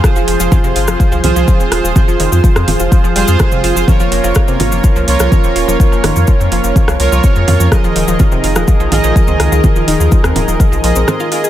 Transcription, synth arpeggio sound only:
X:1
M:4/4
L:1/16
Q:1/4=125
K:Fm
V:1 name="Synth arpeggio sound"
[F,F] [F,F] [F,F] [F,F] [Ff] [C,C] [Ff] [F,F] [F,F] [F,F] [F,F] [F,F] [F,F] [Cc] [Ff] [F,F] | [F,F] [F,F] [E,E] [F,F] [F,F] [Cc] [F,F] [F,F] [F,F] [F,F] [G,G] [Ff] [A,A] [C,C] [Ff] [F,F] | [F,F] [F,F] [F,F] [F,F] [Ff] [C,C] [Ff] [F,F] [F,F] [F,F] [F,F] [F,F] [F,F] [Cc] [Ff] [F,F] | [F,F] [F,F] [E,E] [F,F] [F,F] [Cc] [F,F] [F,F] [F,F] [F,F] [F,F] [F,F] [C,C] [A,A] [Ff] [F,F] |
[F,F] [F,F] [F,F] [F,F] [Ff] [C,C] [Ff] [F,F] [F,F] [F,F] [F,F] [F,F] [F,F] [Cc] [Ff] [F,F] | [F,F] [F,F] [E,E] [F,F] [F,F] [Cc] [F,F] [F,F] [F,F] [F,F] [F,F] [Cc] [Cc] [Ff] [Ff] [Aa] |]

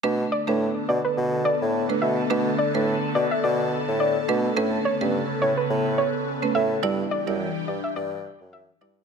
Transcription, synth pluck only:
X:1
M:4/4
L:1/16
Q:"Swing 16ths" 1/4=106
K:Bm
V:1 name="Synth pluck"
z2 d z3 d B z2 d z3 e z | z2 d z3 d e d3 z d3 z | z2 c z3 c B z2 c z3 e z | z2 d z3 d e d3 z e z d z |]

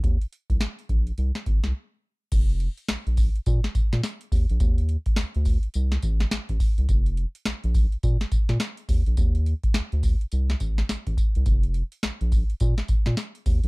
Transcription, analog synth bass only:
X:1
M:4/4
L:1/16
Q:"Swing 16ths" 1/4=105
K:Fmix
V:1 name="Analog synth bass" clef=bass
E,, z2 C,, z2 B,,,2 C,, z G,,, C,, z4 | F,,,3 z B,,, B,,,2 z B,, z B,, B,, z2 E,, B,,, | E,,3 z D,, D,,2 z C,,2 A,,,2 A,,, A,,, z C,, | F,,,3 z B,,, B,,,2 z B,, z B,, B,, z2 E,, B,,, |
E,,3 z D,, D,,2 z C,,2 A,,,2 A,,, A,,, z C,, | F,,,3 z B,,, B,,,2 z B,, z B,, B,, z2 E,, B,,, |]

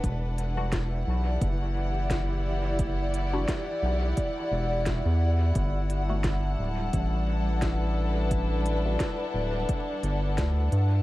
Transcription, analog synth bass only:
X:1
M:4/4
L:1/16
Q:"Swing 16ths" 1/4=87
K:Em
V:1 name="Analog synth bass" clef=bass
E,,,6 B,,,2 F,,,8- | F,,,4 z2 B,,,2 z2 E,,,3 E,,3 | G,,,6 D,,,2 A,,,8- | A,,,4 z2 D,,,2 z2 G,,,2 D,,2 G,,2 |]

